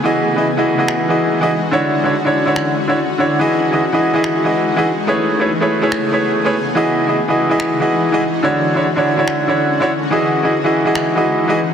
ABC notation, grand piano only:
X:1
M:4/4
L:1/16
Q:"Swing 16ths" 1/4=143
K:E
V:1 name="Grand piano"
[E,EFGd]3 [E,EFGd] z [E,EFGd]2 [E,EFGd]3 [E,EFGd]3 [E,EFGd] z2 | [=D,=DEFc]3 [D,DEFc] z [D,DEFc]2 [D,DEFc]3 z [D,DEFc] z2 [D,DEFc]2 | [E,EFGd]3 [E,EFGd] z [E,EFGd]2 [E,EFGd]3 [E,EFGd]3 [E,EFGd] z2 | [A,EGBc]3 [A,EGBc] z [A,EGBc]2 [A,EGBc]3 [A,EGBc]3 [A,EGBc] z2 |
[E,EFGd]3 [E,EFGd] z [E,EFGd]2 [E,EFGd]3 [E,EFGd]3 [E,EFGd] z2 | [=D,=DEFc]3 [D,DEFc] z [D,DEFc]2 [D,DEFc]3 [D,DEFc]3 [D,DEFc] z2 | [E,EFGd]3 [E,EFGd] z [E,EFGd]2 [E,EFGd]3 [E,EFGd]3 [E,EFGd] z2 |]